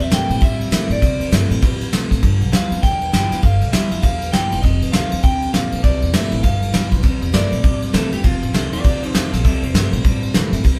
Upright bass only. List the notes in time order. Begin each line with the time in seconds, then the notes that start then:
0.12 G2
0.30 A#2
0.42 A2
0.71 C3
0.90 A2
1.02 C2
1.20 E2
1.32 G2
1.51 A#2
1.63 A2
1.92 C3
2.11 A2
2.23 G1
2.40 B1
2.52 D2
2.71 F2
2.83 E2
3.13 G2
3.32 E2
3.43 G1
3.62 B1
3.74 D2
3.91 F2
4.03 E2
4.34 G2
4.52 E1
4.64 F1
4.83 A1
4.94 C2
5.12 D#2
5.24 D2
5.54 F2
5.72 D2
5.84 C2
6.03 E2
6.14 G2
6.32 A1
6.44 G1
6.74 G2
6.92 B1
7.04 C2
7.22 E2
7.34 G2
7.52 A#2
7.64 A2
7.94 C3
8.12 E2
8.25 F1
8.43 A1
8.54 C2
8.73 D#2
8.85 D2
9.14 F2
9.32 A#1
9.45 C2
9.62 E2
9.74 G2
9.93 A#2
10.05 A2
10.35 C3
10.52 A2
10.65 C2